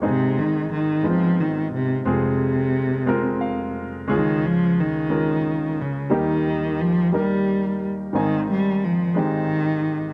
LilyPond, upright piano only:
<<
  \new Staff \with { instrumentName = "Upright piano" } { \time 6/8 \key aes \major \tempo 4. = 59 << { r2. | r2 f''4 | r2. | r2. |
r2. | } \\ { <aes c' ees' aes'>4 r8 <aes ces' c' ees' f'>4 r8 | <aes c' f' aes'>4 r8 <aes c' f' bes'>4 r8 | <aes des' f' aes'>4 r8 <aes des' f' bes'>4 r8 | <g bes ees' g'>4 r8 <g bes ees' bes'>4 r8 |
<ees c' ees' aes''>4 r8 <aes c' ees' g'>4 r8 | } >> }
  \new Staff \with { instrumentName = "Upright piano" } { \clef bass \time 6/8 \key aes \major <aes,, aes,>2. | <f,, f,>2. | <des, des>2. | <ees, ees>2. |
<aes,, aes,>2. | }
>>